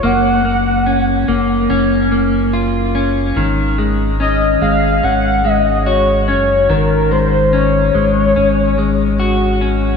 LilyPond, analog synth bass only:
\new Staff \with { instrumentName = "Analog synth bass" } { \clef bass \time 4/4 \key aes \mixolydian \tempo 4 = 72 ges,,4. ges,,8 ges,,2 | aes,,4. aes,,8 aes,,4. ges,,8 | aes,,4. aes,,8 aes,,2 | }